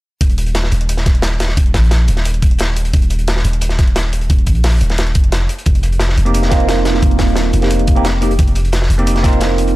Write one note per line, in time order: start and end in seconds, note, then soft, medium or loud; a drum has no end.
0.21 0.71 D#1 medium
0.21 kick loud
0.21 closed hi-hat medium
0.30 closed hi-hat soft
0.38 closed hi-hat medium
0.46 closed hi-hat soft
0.55 snare loud
0.55 closed hi-hat medium
0.64 snare medium
0.72 1.56 D#1 medium
0.72 closed hi-hat medium
0.81 closed hi-hat soft
0.89 closed hi-hat medium
0.97 snare soft
0.97 closed hi-hat soft
1.06 kick medium
1.06 snare soft
1.06 closed hi-hat medium
1.15 closed hi-hat soft
1.22 snare loud
1.22 closed hi-hat medium
1.40 snare medium
1.40 closed hi-hat medium
1.48 snare soft
1.57 1.76 D#1 loud
1.57 kick loud
1.57 closed hi-hat medium
1.66 closed hi-hat soft
1.74 2.07 A#1 medium
1.74 kick medium
1.74 snare medium
1.74 closed hi-hat medium
1.83 closed hi-hat soft
1.91 snare medium
1.91 closed hi-hat medium
2.08 2.92 D#1 medium
2.08 closed hi-hat medium
2.17 snare soft
2.17 closed hi-hat soft
2.25 closed hi-hat medium
2.34 closed hi-hat soft
2.42 kick loud
2.42 closed hi-hat medium
2.51 closed hi-hat soft
2.59 snare loud
2.59 closed hi-hat medium
2.76 closed hi-hat medium
2.85 closed hi-hat soft
2.93 3.43 D#1 loud
2.93 kick loud
2.93 closed hi-hat medium
3.02 closed hi-hat soft
3.10 closed hi-hat medium
3.19 closed hi-hat soft
3.28 snare loud
3.28 closed hi-hat medium
3.37 snare medium
3.44 4.29 D#1 medium
3.44 closed hi-hat medium
3.53 closed hi-hat soft
3.61 closed hi-hat medium
3.69 snare soft
3.69 closed hi-hat soft
3.79 kick loud
3.79 snare soft
3.79 closed hi-hat medium
3.87 closed hi-hat soft
3.96 snare loud
3.96 closed hi-hat medium
4.13 closed hi-hat medium
4.21 closed hi-hat soft
4.30 4.48 D#1 loud
4.30 kick loud
4.30 closed hi-hat medium
4.38 closed hi-hat soft
4.46 4.80 A#1 medium
4.46 kick medium
4.46 closed hi-hat medium
4.55 closed hi-hat soft
4.64 snare loud
4.64 closed hi-hat medium
4.64 open hi-hat medium
4.81 5.17 D#1 medium
4.81 closed hi-hat medium
4.90 snare soft
4.90 closed hi-hat soft
4.98 snare loud
4.98 closed hi-hat medium
5.07 closed hi-hat soft
5.15 5.48 F1 medium
5.15 kick loud
5.15 closed hi-hat medium
5.24 closed hi-hat soft
5.32 snare loud
5.32 closed hi-hat medium
5.49 closed hi-hat medium
5.58 closed hi-hat soft
5.66 6.16 F1 loud
5.66 kick loud
5.66 closed hi-hat medium
5.75 closed hi-hat soft
5.83 closed hi-hat medium
5.92 closed hi-hat soft
6.00 snare loud
6.00 closed hi-hat medium
6.09 snare medium
6.17 7.01 F1 medium
6.17 closed hi-hat medium
6.25 6.48 A#3 medium
6.25 6.49 C4 medium
6.25 6.50 D#4 medium
6.25 6.50 G4 loud
6.25 closed hi-hat soft
6.34 closed hi-hat medium
6.43 snare soft
6.43 closed hi-hat soft
6.50 7.59 A#3 medium
6.50 7.60 C4 medium
6.50 7.61 D#4 medium
6.50 7.61 F4 loud
6.50 kick medium
6.50 snare soft
6.50 closed hi-hat medium
6.60 closed hi-hat soft
6.69 snare loud
6.69 closed hi-hat medium
6.85 snare medium
6.85 closed hi-hat medium
6.94 snare soft
7.02 7.21 F1 loud
7.02 kick loud
7.02 closed hi-hat medium
7.11 closed hi-hat soft
7.19 7.52 D#1 medium
7.19 kick medium
7.19 snare loud
7.19 closed hi-hat medium
7.28 closed hi-hat soft
7.36 snare loud
7.36 closed hi-hat medium
7.53 8.38 F1 medium
7.53 closed hi-hat medium
7.61 7.94 A#3 medium
7.61 7.94 C4 medium
7.61 7.95 D#4 medium
7.61 7.95 G4 medium
7.61 snare soft
7.61 closed hi-hat soft
7.71 closed hi-hat medium
7.79 closed hi-hat soft
7.87 kick medium
7.87 closed hi-hat medium
7.95 8.06 A#3 medium
7.95 8.06 C4 medium
7.95 8.07 D#4 medium
7.95 8.07 G4 loud
7.95 closed hi-hat soft
8.05 snare loud
8.05 closed hi-hat medium
8.21 8.32 A#3 medium
8.21 8.32 C4 medium
8.21 8.32 D#4 medium
8.21 8.32 G4 loud
8.21 closed hi-hat medium
8.31 closed hi-hat soft
8.39 8.89 F1 loud
8.39 kick loud
8.39 closed hi-hat medium
8.47 closed hi-hat soft
8.55 closed hi-hat medium
8.65 closed hi-hat soft
8.73 snare loud
8.73 closed hi-hat medium
8.82 snare medium
8.90 9.74 F1 medium
8.90 closed hi-hat medium
8.98 9.21 A#3 medium
8.98 9.22 C4 medium
8.98 9.22 D#4 medium
8.98 9.23 G4 loud
8.98 closed hi-hat soft
9.07 closed hi-hat medium
9.16 snare soft
9.16 closed hi-hat soft
9.23 9.76 A#3 loud
9.23 9.76 C4 medium
9.23 9.76 D#4 medium
9.23 9.76 F4 loud
9.23 kick medium
9.23 snare soft
9.23 closed hi-hat medium
9.33 closed hi-hat soft
9.41 snare loud
9.41 closed hi-hat medium
9.58 closed hi-hat medium
9.67 closed hi-hat soft